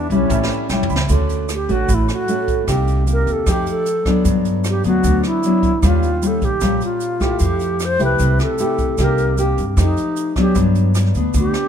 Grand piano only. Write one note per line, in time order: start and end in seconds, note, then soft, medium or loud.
0.00 0.27 D4 medium
0.00 0.28 G4 soft
0.00 0.29 B4 soft
0.00 0.30 E5 medium
0.27 1.06 C#4 soft
0.27 1.07 G4 soft
0.27 1.08 A4 soft
0.33 1.09 E5 medium
0.70 0.88 G5 medium
0.90 1.08 B5 soft